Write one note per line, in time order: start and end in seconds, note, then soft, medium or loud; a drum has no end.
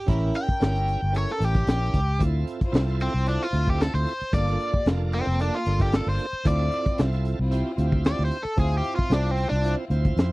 0.06 0.30 A1 loud
0.06 0.48 C#4 medium
0.06 0.28 C#4 medium
0.06 0.48 E4 medium
0.06 0.34 E4 medium
0.06 0.28 G4 medium
0.06 0.48 G4 medium
0.06 0.48 A#4 loud
0.06 0.28 A#4 medium
0.06 kick loud
0.06 closed hi-hat medium
0.34 1.13 G5 medium
0.34 closed hi-hat medium
0.49 0.75 C#4 medium
0.49 0.75 G4 medium
0.49 0.76 A#4 medium
0.49 kick medium
0.60 0.96 G1 loud
0.60 1.01 C#4 medium
0.60 1.01 E4 medium
0.60 1.01 G4 medium
0.60 1.02 A#4 medium
0.60 snare loud
0.60 closed hi-hat medium
0.76 closed hi-hat soft
0.88 closed hi-hat medium
1.01 1.24 G1 medium
1.01 1.54 C#4 medium
1.01 1.55 G4 medium
1.01 1.55 A#4 medium
1.12 1.34 C#4 medium
1.12 1.34 E4 medium
1.12 1.34 G4 medium
1.12 1.34 A4 medium
1.12 closed hi-hat medium
1.18 1.30 C#5 medium
1.29 1.45 A4 medium
1.29 closed hi-hat soft
1.39 1.63 A1 medium
1.39 2.00 C#4 medium
1.39 2.00 E4 medium
1.39 2.00 G4 medium
1.39 2.00 A#4 medium
1.39 closed hi-hat medium
1.45 1.68 G4 medium
1.55 kick medium
1.55 closed hi-hat soft
1.67 1.91 A#1 medium
1.67 2.20 G4 medium
1.67 snare loud
1.67 closed hi-hat medium
1.94 2.18 C#2 medium
1.94 kick medium
1.94 closed hi-hat medium
2.19 2.43 D2 loud
2.19 2.60 C4 medium
2.19 2.60 E4 medium
2.19 2.41 E4 medium
2.19 2.60 F4 medium
2.19 2.41 F4 medium
2.19 2.61 A4 medium
2.19 2.42 C5 medium
2.19 kick loud
2.19 closed hi-hat medium
2.47 closed hi-hat medium
2.61 2.89 E4 medium
2.61 2.89 F4 medium
2.61 2.89 C5 loud
2.61 kick medium
2.61 closed hi-hat soft
2.72 3.07 C2 loud
2.72 3.13 C4 loud
2.72 3.13 E4 medium
2.72 3.14 F4 medium
2.72 3.14 A4 medium
2.72 snare loud
2.72 closed hi-hat medium
2.88 closed hi-hat soft
3.00 3.27 C4 loud
3.00 closed hi-hat medium
3.14 3.37 C2 medium
3.14 3.68 E4 medium
3.14 3.68 F4 medium
3.14 3.68 C5 medium
3.26 3.47 C4 medium
3.26 3.43 D4 medium
3.26 3.47 E4 medium
3.26 3.47 F4 medium
3.26 3.47 A4 medium
3.26 closed hi-hat medium
3.43 3.67 F4 medium
3.53 3.87 D2 medium
3.53 4.13 C4 medium
3.53 4.13 E4 medium
3.53 4.13 F4 medium
3.53 4.14 A4 medium
3.53 closed hi-hat medium
3.68 3.81 G4 medium
3.68 kick medium
3.80 3.94 A4 medium
3.80 snare loud
3.80 closed hi-hat medium
3.94 4.04 D2 medium
3.94 4.32 C5 medium
3.94 closed hi-hat soft
4.07 closed hi-hat medium
4.21 muted fingered electric bass stroke soft
4.21 closed hi-hat soft
4.33 4.56 G1 loud
4.33 4.73 A#3 medium
4.33 4.54 A#3 medium
4.33 4.74 D4 medium
4.33 4.74 F4 medium
4.33 4.54 F4 medium
4.33 4.74 A4 medium
4.33 4.54 A4 medium
4.33 4.85 D5 loud
4.33 kick loud
4.33 closed hi-hat medium
4.47 closed hi-hat soft
4.60 closed hi-hat medium
4.73 5.00 A#3 medium
4.73 5.00 F4 medium
4.73 5.01 G4 medium
4.73 kick medium
4.86 5.20 F1 medium
4.86 5.27 A#3 medium
4.86 5.27 D4 medium
4.86 5.27 F4 medium
4.86 5.27 A4 medium
4.86 snare loud
4.86 closed hi-hat medium
5.13 5.39 C4 medium
5.13 closed hi-hat medium
5.27 5.49 F1 medium
5.27 5.81 A#3 medium
5.27 5.81 F4 medium
5.27 5.81 A4 medium
5.40 5.60 A#3 medium
5.40 5.60 D4 medium
5.40 5.54 D4 medium
5.40 5.60 F4 medium
5.40 5.60 A4 medium
5.40 closed hi-hat medium
5.55 5.80 F4 medium
5.66 6.00 G1 medium
5.66 6.26 A#3 medium
5.66 6.26 D4 medium
5.66 6.26 F4 medium
5.66 6.27 A4 medium
5.66 closed hi-hat medium
5.80 5.93 G4 medium
5.80 kick medium
5.80 closed hi-hat soft
5.92 6.08 A4 medium
5.92 snare loud
5.92 closed hi-hat medium
6.06 6.17 G1 medium
6.06 6.46 C5 medium
6.06 closed hi-hat soft
6.19 closed hi-hat medium
6.33 muted fingered electric bass stroke soft
6.45 6.68 D2 loud
6.45 6.86 C4 medium
6.45 6.66 C4 medium
6.45 6.86 E4 medium
6.45 6.66 E4 medium
6.45 6.86 F4 medium
6.45 6.66 F4 medium
6.45 6.86 A4 medium
6.45 6.98 D5 loud
6.45 kick loud
6.45 closed hi-hat medium
6.72 closed hi-hat medium
6.86 7.13 C4 medium
6.86 7.13 E4 medium
6.86 7.13 F4 medium
6.86 kick medium
6.86 closed hi-hat soft
6.97 7.33 C2 loud
6.97 7.39 C4 medium
6.97 7.39 E4 medium
6.97 7.39 F4 medium
6.97 7.39 A4 medium
6.97 snare loud
6.97 closed hi-hat medium
7.13 snare soft
7.13 closed hi-hat soft
7.25 closed hi-hat medium
7.38 7.62 C2 medium
7.38 7.92 C4 medium
7.38 7.93 E4 medium
7.38 7.93 F4 loud
7.51 7.72 C4 medium
7.51 7.72 E4 medium
7.51 7.72 F4 medium
7.51 7.72 G4 medium
7.51 closed hi-hat medium
7.77 8.12 D2 medium
7.77 8.38 C4 medium
7.77 8.38 E4 medium
7.77 8.38 F4 medium
7.77 8.38 G4 medium
7.77 closed hi-hat medium
7.92 kick medium
8.05 8.23 D5 medium
8.05 snare loud
8.05 closed hi-hat medium
8.19 8.30 D2 medium
8.19 closed hi-hat soft
8.25 8.41 C5 medium
8.31 closed hi-hat medium
8.43 8.59 A4 medium
8.43 muted fingered electric bass stroke soft
8.43 closed hi-hat soft
8.57 8.80 D2 loud
8.57 8.98 C4 medium
8.57 8.78 C4 medium
8.57 8.98 E4 medium
8.57 8.79 E4 medium
8.57 8.99 F4 medium
8.57 8.79 F4 medium
8.57 8.76 G#4 medium
8.57 8.99 C5 medium
8.57 kick loud
8.57 closed hi-hat medium
8.72 closed hi-hat soft
8.77 8.94 G4 medium
8.84 closed hi-hat medium
8.95 9.25 C4 medium
8.95 9.25 E4 medium
8.95 9.12 F4 medium
8.95 9.25 F4 medium
8.95 kick medium
9.10 9.45 C2 loud
9.10 9.51 C4 medium
9.10 9.31 D4 medium
9.10 9.51 E4 medium
9.10 9.51 F4 medium
9.10 9.52 C5 medium
9.10 snare loud
9.10 closed hi-hat medium
9.27 snare soft
9.31 9.47 C4 medium
9.37 open hi-hat medium
9.49 9.74 C2 medium
9.49 10.05 C4 medium
9.49 9.74 D4 loud
9.49 10.05 E4 medium
9.49 10.05 F4 medium
9.64 9.85 C4 medium
9.64 9.85 E4 medium
9.64 9.85 F4 medium
9.64 9.85 C5 medium
9.64 closed hi-hat medium
9.90 10.13 D2 medium
9.90 10.32 C4 medium
9.90 10.32 E4 medium
9.90 10.32 F4 medium
9.90 10.32 C5 medium
9.90 closed hi-hat medium
10.05 kick medium
10.05 closed hi-hat soft
10.17 10.32 F2 medium
10.17 snare loud
10.17 closed hi-hat medium